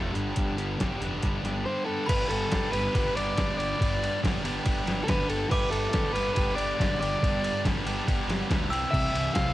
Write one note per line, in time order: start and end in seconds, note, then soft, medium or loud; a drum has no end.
0.00 0.13 F1 medium
0.00 0.13 F3 medium
0.00 0.13 A3 medium
0.00 0.15 D4 medium
0.00 0.14 A4 medium
0.14 0.35 G1 medium
0.14 0.34 G2 medium
0.14 0.36 D3 medium
0.14 0.36 G3 medium
0.14 0.36 B3 medium
0.14 0.36 D4 medium
0.14 0.37 G4 medium
0.14 closed hi-hat medium
0.36 0.76 G1 medium
0.36 0.56 G2 medium
0.36 0.57 D3 medium
0.36 0.57 G3 medium
0.36 0.57 B3 medium
0.36 0.57 D4 medium
0.36 0.58 G4 medium
0.36 kick loud
0.36 closed hi-hat medium
0.57 0.80 G2 medium
0.57 0.80 D3 medium
0.57 0.80 G3 medium
0.57 0.80 B3 medium
0.57 0.81 D4 medium
0.57 0.81 G4 medium
0.57 closed hi-hat medium
0.80 1.00 G1 medium
0.80 1.01 G2 medium
0.80 1.01 D3 medium
0.80 1.01 G3 medium
0.80 1.02 B3 medium
0.80 1.02 D4 medium
0.80 1.02 G4 medium
0.80 kick medium
0.80 snare loud
0.80 closed hi-hat medium
1.01 1.21 F1 medium
1.01 1.22 G2 medium
1.01 1.22 D3 medium
1.01 1.22 G3 medium
1.01 1.23 B3 medium
1.01 1.23 D4 medium
1.01 1.24 G4 medium
1.01 closed hi-hat medium
1.22 1.43 G1 medium
1.22 1.42 G2 medium
1.22 1.43 D3 medium
1.22 1.44 G3 medium
1.22 1.43 B3 medium
1.22 1.44 D4 medium
1.22 1.44 G4 medium
1.22 kick loud
1.22 closed hi-hat medium
1.43 1.64 G1 medium
1.43 1.65 G2 medium
1.43 1.65 D3 medium
1.43 1.66 G3 medium
1.43 1.66 B3 medium
1.43 1.66 D4 medium
1.43 1.66 G4 medium
1.43 snare soft
1.43 closed hi-hat medium
1.66 1.84 G2 medium
1.66 1.84 D3 medium
1.66 1.85 G3 medium
1.66 1.85 B3 medium
1.66 1.86 D4 medium
1.66 1.86 G4 medium
1.66 1.85 C5 medium
1.85 2.05 G2 medium
1.85 2.06 D3 medium
1.85 2.07 G3 medium
1.85 2.07 B3 medium
1.85 2.07 D4 medium
1.85 2.07 G4 medium
1.85 2.09 A4 medium
2.06 2.22 G1 medium
2.06 3.36 G2 medium
2.06 2.72 D3 medium
2.06 2.51 G3 medium
2.06 2.52 B3 medium
2.06 2.53 D4 loud
2.06 2.53 G4 loud
2.06 2.29 B4 medium
2.06 5.46 B5 medium
2.06 kick loud
2.06 crash loud
2.06 ride loud
2.29 2.44 G1 medium
2.29 2.72 A4 medium
2.29 ride medium
2.52 2.65 G1 medium
2.52 2.76 G3 medium
2.52 2.74 B3 medium
2.52 2.74 D4 medium
2.52 2.73 G4 medium
2.52 kick loud
2.52 snare loud
2.52 ride loud
2.72 2.87 G1 loud
2.72 2.94 G3 medium
2.72 2.95 B3 medium
2.72 2.96 D4 medium
2.72 2.96 G4 medium
2.72 2.94 B4 loud
2.72 ride medium
2.94 3.08 G1 loud
2.94 3.37 G3 medium
2.94 3.37 B3 medium
2.94 3.38 D4 medium
2.94 3.38 G4 medium
2.94 3.16 B4 medium
2.94 kick loud
2.94 ride loud
3.17 3.31 G1 medium
3.17 3.56 D5 loud
3.17 ride medium
3.37 3.51 G1 loud
3.37 3.78 G2 medium
3.37 3.77 D3 medium
3.37 3.58 G3 loud
3.37 3.57 B3 medium
3.37 3.57 D4 loud
3.37 3.56 G4 loud
3.37 kick loud
3.37 snare loud
3.37 ride medium
3.56 3.72 G1 medium
3.56 3.79 G3 medium
3.56 3.79 B3 medium
3.56 3.80 D4 medium
3.56 3.79 G4 medium
3.56 4.19 D5 medium
3.56 ride medium
3.78 4.08 G1 medium
3.78 5.07 G2 medium
3.78 4.44 D3 medium
3.78 4.21 G3 loud
3.78 4.22 B3 medium
3.78 4.22 D4 loud
3.78 4.23 G4 loud
3.78 kick loud
3.78 ride loud
4.04 ride medium
4.22 4.37 G1 medium
4.22 4.45 G3 medium
4.22 4.44 B3 medium
4.22 4.44 D4 medium
4.22 4.43 G4 medium
4.22 kick loud
4.22 snare loud
4.22 ride loud
4.44 4.58 G1 loud
4.44 4.65 G3 medium
4.44 4.65 B3 medium
4.44 4.66 D4 medium
4.44 4.67 G4 medium
4.44 ride medium
4.65 4.80 G1 loud
4.65 5.07 G3 medium
4.65 5.08 B3 medium
4.65 5.08 D4 medium
4.65 5.08 G4 medium
4.65 kick loud
4.65 ride loud
4.87 5.01 G1 medium
4.87 snare medium
4.87 ride medium
5.04 5.51 G2 medium
5.04 5.50 D3 loud
5.04 5.30 G3 loud
5.04 5.09 A4 medium
5.08 5.22 G1 medium
5.08 5.29 B3 loud
5.08 5.29 D4 loud
5.08 5.28 G4 loud
5.08 5.29 B4 medium
5.08 kick loud
5.08 snare loud
5.08 ride loud
5.29 5.43 G1 medium
5.29 5.51 G3 medium
5.29 5.51 B3 medium
5.29 5.53 D4 medium
5.29 5.52 G4 medium
5.29 5.50 A4 medium
5.29 ride medium
5.51 5.64 G1 loud
5.51 6.78 G2 medium
5.51 6.16 D3 medium
5.51 5.93 G3 medium
5.51 5.93 B3 loud
5.51 5.94 D4 loud
5.51 5.95 G4 loud
5.51 5.71 B4 medium
5.51 8.82 D6 loud
5.51 kick loud
5.51 crash loud
5.71 5.86 G1 loud
5.71 6.13 A4 medium
5.71 ride medium
5.93 6.07 G1 medium
5.93 6.17 G3 medium
5.93 6.15 B3 medium
5.93 6.14 D4 medium
5.93 6.15 G4 medium
5.93 kick loud
5.93 snare loud
5.93 ride loud
6.14 6.29 G1 loud
6.14 6.35 G3 medium
6.14 6.35 B3 medium
6.14 6.36 D4 medium
6.14 6.37 G4 medium
6.14 6.33 B4 loud
6.14 ride medium
6.34 6.51 G1 loud
6.34 6.79 G3 medium
6.34 6.79 B3 medium
6.34 6.78 D4 medium
6.34 6.80 G4 medium
6.34 6.55 B4 loud
6.34 kick loud
6.34 ride loud
6.56 6.72 G1 medium
6.56 6.99 D5 loud
6.56 ride medium
6.79 6.93 G1 medium
6.79 7.20 G2 loud
6.79 7.21 D3 loud
6.79 7.03 G3 loud
6.79 7.01 B3 loud
6.79 7.01 D4 loud
6.79 7.01 G4 loud
6.79 kick loud
6.79 snare loud
6.79 ride loud
7.01 7.15 G1 medium
7.01 7.21 G3 medium
7.01 7.21 B3 medium
7.01 7.22 D4 medium
7.01 7.23 G4 medium
7.01 7.61 D5 loud
7.01 ride medium
7.21 7.50 G1 loud
7.21 7.86 G2 medium
7.21 7.87 D3 medium
7.21 7.64 G3 medium
7.21 7.63 B3 loud
7.21 7.64 D4 loud
7.21 7.65 G4 loud
7.21 kick loud
7.21 ride loud
7.44 ride medium
7.64 7.79 G1 medium
7.64 7.87 G3 medium
7.64 7.86 B3 medium
7.64 7.85 D4 medium
7.64 7.85 G4 medium
7.64 kick loud
7.64 snare loud
7.64 ride loud
7.86 8.00 G1 loud
7.86 8.06 G3 medium
7.86 8.06 B3 medium
7.86 8.07 D4 medium
7.86 8.08 G4 medium
7.86 ride medium
8.07 8.21 G1 medium
8.07 8.50 G3 medium
8.07 8.50 B3 medium
8.07 8.50 D4 medium
8.07 8.51 G4 medium
8.07 kick loud
8.07 ride loud
8.27 8.41 G1 medium
8.27 snare medium
8.27 ride medium
8.50 8.64 D2 medium
8.50 8.71 G2 loud
8.50 8.71 D3 loud
8.50 8.71 G3 loud
8.50 8.71 B3 medium
8.50 8.70 D4 medium
8.50 8.70 G4 loud
8.50 kick loud
8.50 snare loud
8.50 ride loud
8.70 8.84 C2 medium
8.70 8.91 C3 medium
8.70 8.91 E3 medium
8.70 8.92 G3 medium
8.70 8.92 C4 medium
8.70 8.93 G4 medium
8.70 9.53 E6 medium
8.70 ride medium
8.91 9.07 C2 loud
8.91 9.53 C3 medium
8.91 9.34 E3 medium
8.91 9.34 G3 medium
8.91 9.35 C4 medium
8.91 9.35 G4 loud
8.91 9.34 E5 medium
8.91 kick loud
8.91 crash loud
9.14 9.27 C2 loud
9.14 ride medium
9.34 9.49 C2 medium
9.34 9.53 E3 medium
9.34 9.53 G3 medium
9.34 9.53 C4 medium
9.34 9.53 G4 medium
9.34 9.53 F5 medium
9.34 kick loud
9.34 snare loud
9.34 ride loud